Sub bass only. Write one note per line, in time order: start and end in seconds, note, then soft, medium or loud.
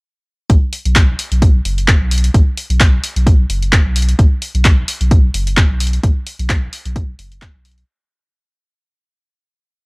0.50 0.59 B1 loud
0.86 1.15 B1 medium
1.32 1.61 B1 medium
1.65 1.95 F#1 medium
2.01 2.30 B1 medium
2.34 2.44 B1 loud
2.70 2.99 B1 loud
3.16 3.45 B1 medium
3.50 3.80 F#1 medium
3.85 4.14 B1 medium
4.19 4.28 B1 loud
4.55 4.84 B1 loud
5.01 5.30 B1 medium
5.34 5.65 F#1 medium
5.70 5.99 B1 medium
6.04 6.13 B1 loud
6.39 6.68 B1 loud
6.86 7.15 B1 medium
7.19 7.49 F#1 medium
7.55 7.84 B1 medium